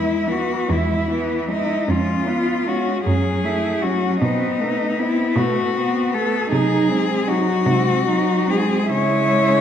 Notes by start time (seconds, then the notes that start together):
Already playing: E2 G#3 E4
0.26 E3 B3
0.31 F#4
0.68 E2 G#3 E4
0.72 E4
1.09 E3 B3
1.48 G#3 D#4 E4
1.87 F2 G#3 C#4 F4
2.26 B3 F4
2.66 G#3 C#4 F#4
3.05 F#2 F#3 C#4 G#4
3.43 A3 E4
3.81 F#3 C#4 F#4
4.21 B2 B3 C4 D#4
4.59 A3 B3
4.98 B3 C4 E4
5.35 B2 A3 B3 F#4
5.73 B3 C4
6.12 A3 B3 A4
6.50 C3 F#3 D#4 G#4
6.89 G#3 C4
7.27 F#3 D#4 F#4
7.66 C3 G#3 C4
8.06 F#3 D#4
8.47 G#3 C4 G#4
8.90 C#3 G#3 E4 C#5